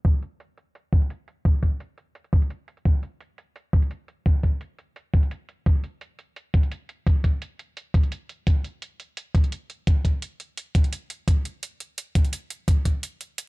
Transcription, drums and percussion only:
0.05 kick loud
0.05 closed hi-hat medium
0.23 closed hi-hat medium
0.40 closed hi-hat medium
0.58 closed hi-hat medium
0.75 closed hi-hat medium
0.93 kick medium
0.93 closed hi-hat medium
1.02 closed hi-hat soft
1.10 closed hi-hat medium
1.28 closed hi-hat medium
1.45 kick loud
1.45 closed hi-hat medium
1.63 kick medium
1.63 closed hi-hat medium
1.80 closed hi-hat medium
1.98 closed hi-hat medium
2.15 closed hi-hat medium
2.24 closed hi-hat soft
2.33 kick medium
2.33 closed hi-hat medium
2.42 closed hi-hat soft
2.50 closed hi-hat medium
2.68 closed hi-hat medium
2.77 closed hi-hat soft
2.85 kick loud
2.85 closed hi-hat medium
3.03 closed hi-hat medium
3.21 closed hi-hat medium
3.38 closed hi-hat medium
3.56 closed hi-hat medium
3.73 kick medium
3.73 closed hi-hat medium
3.82 closed hi-hat soft
3.91 closed hi-hat medium
4.08 closed hi-hat medium
4.26 kick loud
4.26 closed hi-hat medium
4.43 kick medium
4.43 closed hi-hat medium
4.61 closed hi-hat medium
4.79 closed hi-hat medium
4.96 closed hi-hat medium
5.14 kick loud
5.14 closed hi-hat medium
5.23 closed hi-hat soft
5.31 closed hi-hat medium
5.49 closed hi-hat medium
5.66 kick loud
5.66 closed hi-hat medium
5.84 closed hi-hat medium
6.01 closed hi-hat medium
6.19 closed hi-hat medium
6.36 closed hi-hat medium
6.54 kick loud
6.54 closed hi-hat medium
6.63 closed hi-hat soft
6.72 closed hi-hat medium
6.89 closed hi-hat medium
7.07 kick loud
7.07 closed hi-hat medium
7.24 kick medium
7.24 closed hi-hat medium
7.42 closed hi-hat medium
7.59 closed hi-hat medium
7.77 closed hi-hat medium
7.94 kick loud
7.94 closed hi-hat medium
8.03 closed hi-hat soft
8.12 closed hi-hat medium
8.29 closed hi-hat medium
8.47 kick loud
8.47 closed hi-hat medium
8.64 closed hi-hat medium
8.82 closed hi-hat medium
9.00 closed hi-hat medium
9.17 closed hi-hat medium
9.35 kick medium
9.35 closed hi-hat medium
9.44 closed hi-hat soft
9.52 closed hi-hat medium
9.70 closed hi-hat medium
9.87 kick loud
9.87 closed hi-hat medium
10.05 kick medium
10.05 closed hi-hat medium
10.22 closed hi-hat medium
10.40 closed hi-hat medium
10.57 closed hi-hat medium
10.75 kick medium
10.75 closed hi-hat medium
10.84 closed hi-hat soft
10.93 closed hi-hat medium
11.10 closed hi-hat medium
11.28 kick loud
11.28 closed hi-hat medium
11.45 closed hi-hat medium
11.63 closed hi-hat medium
11.80 closed hi-hat medium
11.98 closed hi-hat medium
12.15 kick medium
12.15 closed hi-hat medium
12.25 closed hi-hat soft
12.33 closed hi-hat medium
12.50 closed hi-hat medium
12.68 kick loud
12.68 closed hi-hat medium
12.85 kick medium
12.85 closed hi-hat medium
13.03 closed hi-hat medium
13.21 closed hi-hat medium
13.38 closed hi-hat medium

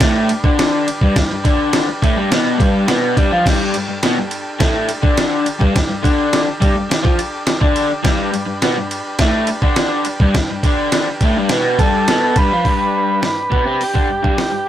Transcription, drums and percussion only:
0.00 kick loud
0.00 snare loud
0.00 ride loud
0.29 ride medium
0.44 kick loud
0.59 snare loud
0.59 ride loud
0.88 ride medium
1.01 kick loud
1.16 kick loud
1.16 snare loud
1.16 ride loud
1.45 kick loud
1.45 ride medium
1.73 snare loud
1.73 ride loud
2.02 kick loud
2.02 ride medium
2.32 snare loud
2.32 ride loud
2.60 kick loud
2.60 ride medium
2.88 snare loud
2.88 ride medium
3.17 kick loud
3.17 ride medium
3.46 kick loud
3.46 snare loud
3.46 crash loud
3.74 ride medium
4.03 snare loud
4.03 ride loud
4.31 ride medium
4.60 kick loud
4.60 snare loud
4.60 ride loud
4.89 ride medium
5.03 kick loud
5.17 snare loud
5.17 ride loud
5.46 ride medium
5.61 kick loud
5.76 kick loud
5.76 snare loud
5.76 ride loud
6.04 kick loud
6.04 ride medium
6.33 snare loud
6.33 ride loud
6.62 kick loud
6.62 ride medium
6.91 snare loud
6.91 ride loud
7.05 kick loud
7.19 ride medium
7.47 snare loud
7.47 ride medium
7.61 kick loud
7.76 ride medium
8.05 kick loud
8.05 snare loud
8.05 ride loud
8.34 ride medium
8.62 snare loud
8.62 ride medium
8.91 ride medium
9.19 kick loud
9.19 snare loud
9.19 ride loud
9.47 ride medium
9.62 kick medium
9.76 snare loud
9.76 ride medium
10.05 ride medium
10.20 kick loud
10.34 kick medium
10.34 snare loud
10.34 ride loud
10.63 kick medium
10.63 ride medium
10.92 snare loud
10.92 ride loud
11.21 kick loud
11.21 ride medium
11.49 snare loud
11.49 ride loud
11.79 kick loud
11.79 ride medium
12.08 snare loud
12.08 ride loud
12.36 kick loud
12.36 ride medium
12.65 kick loud
12.65 open hi-hat medium
13.23 snare loud
13.23 open hi-hat medium
13.52 kick loud
13.81 open hi-hat medium
13.95 kick loud
14.24 kick medium
14.38 snare loud
14.38 open hi-hat medium

